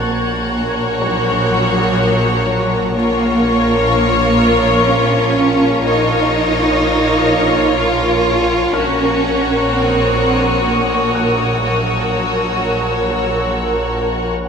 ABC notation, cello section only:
X:1
M:3/4
L:1/8
Q:1/4=62
K:Gblyd
V:1 name="Cello section"
B,2 G,4 | B,4 D2 | E4 F2 | D2 C2 B,2 |
G,4 z2 |]